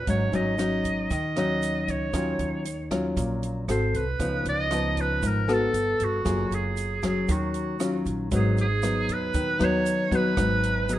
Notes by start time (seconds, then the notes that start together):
0.07 G#1 G#2 F#3 C#4 D#4 C#5, kick, closed hi-hat, shaker
0.32 G#1 F#3 C#4 D#4 D#5, closed hi-hat, shaker
0.58 F#3 C#4 D#4, cross-stick, closed hi-hat, shaker
0.85 kick, closed hi-hat, shaker
1.10 D#2 D#3 D#5, kick, closed hi-hat, shaker
1.36 F#3 C#4 D#4 D#5, cross-stick, closed hi-hat, shaker
1.63 closed hi-hat, shaker
1.88 C#2 C#5, kick, closed hi-hat, shaker
2.13 D#2 D#3 F#3 C#4 F4, kick, cross-stick, closed hi-hat, shaker
2.39 D#2, closed hi-hat, shaker
2.65 closed hi-hat, shaker
2.91 F#3 C#4 F4, kick, cross-stick, closed hi-hat, shaker
3.17 A#1 A#2, kick, closed hi-hat, shaker
3.43 closed hi-hat, shaker
3.68 G#1 C4 F#4 A4 C5, cross-stick, closed hi-hat, shaker
3.94 C2 B4, kick, closed hi-hat, shaker
4.19 C#2 C#3 F3 B3 D#4, kick, closed hi-hat, shaker
4.45 C#2 D#5, closed hi-hat, shaker
4.71 F3 B3 D#4, cross-stick, closed hi-hat, shaker
4.97 kick, closed hi-hat, shaker
5.01 B4
5.23 G#1 G#2, kick, closed hi-hat, shaker
5.27 A#4
5.48 B3 F#4 A4, cross-stick, closed hi-hat, shaker
5.53 A4
5.74 G1, closed hi-hat, shaker
6.00 G1, kick, closed hi-hat, shaker
6.04 F#4
6.25 F#1 F#3 A#3 F4 G#4, kick, cross-stick, closed hi-hat, shaker
6.51 F#1, closed hi-hat, shaker
6.55 G#4
6.77 closed hi-hat, shaker
7.03 F#3 C#4 G#4, kick, cross-stick, closed hi-hat, shaker
7.28 D#2 D#3 F#4, kick, closed hi-hat, shaker
7.54 closed hi-hat, shaker
7.80 F#3 C#4 F4, cross-stick, closed hi-hat, shaker
8.06 A#1, kick, closed hi-hat, shaker
8.31 G#1 G#2 F#3 B3 D#4, kick, closed hi-hat, shaker
8.35 G#4
8.57 G#4, closed hi-hat, shaker
8.83 F#3 B3 D#4, cross-stick, closed hi-hat, shaker
9.09 D#2 B4, closed hi-hat, shaker
9.34 D#2 D#3, kick, closed hi-hat, shaker
9.59 D#2 F#3 B3 D#4, cross-stick, closed hi-hat, shaker
9.64 C#5
9.86 closed hi-hat, shaker
10.11 F#3 B3 D#4, kick, closed hi-hat, shaker
10.15 B4
10.37 G#1 G#2 F#3 B3 D#4, kick, cross-stick, closed hi-hat, shaker
10.63 closed hi-hat, shaker
10.89 F#3 B3 D#4, closed hi-hat, shaker
10.93 G#4